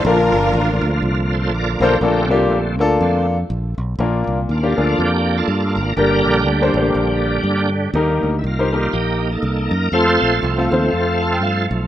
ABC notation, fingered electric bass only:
X:1
M:4/4
L:1/8
Q:"Swing" 1/4=121
K:Bb
V:1 name="Fingered electric bass" clef=bass
B,,, G,,, A,,, D,, C,,2 B,,, _C,, | B,,, C,, B,,, D,, F,,2 B,,, _C,, | B,,, C,, E,, D,, F,,2 G,, _A,,, | G,,, B,,, D,, A,,, B,,,2 G,,2 |
E,, D,, C,,2 B,,,2 C,, _G,, | F,, B,,, C,, E,, F,,2 G,, _C,, |]